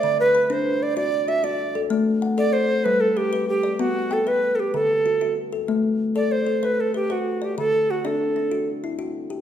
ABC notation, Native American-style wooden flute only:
X:1
M:12/8
L:1/16
Q:3/8=127
K:Ador
V:1 name="Native American-style wooden flute"
d2 B4 c4 d2 d4 e2 d4- d/2 z3/2 | z6 d2 c4 B2 A2 G4 G4 | F4 A2 B3- B/2 A/2 G2 A8 z4 | z6 d2 c4 B2 A2 G2 F4 G2 |
A4 F2 A8 z8 z2 |]